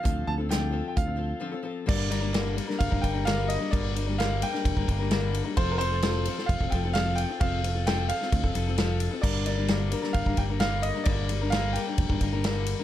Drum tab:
CC |----------------|x---------------|----------------|----------------|
RD |----------------|--x-x-x-x-x-x-x-|x-x-x-x-x-x-x-x-|x-x-x-x-x-x-x-x-|
HH |x---x---x-------|----------------|----------------|----------------|
SD |----o-----------|----o--o----o---|----o--o----o---|----o--o----o---|
BD |o-------o-------|o-------ooo-----|o-------ooo-----|o-------ooo-----|

CC |----------------|x---------------|----------------|
RD |x-x-x-x-x-x-x-x-|--x-x-x-x-x-x-x-|x-x-x-x-x-x-x-x-|
HH |----------------|----------------|----------------|
SD |----o--o----o---|----o--o----o---|----o-------o---|
BD |o-------oo------|o-------ooo-----|o-------ooo-----|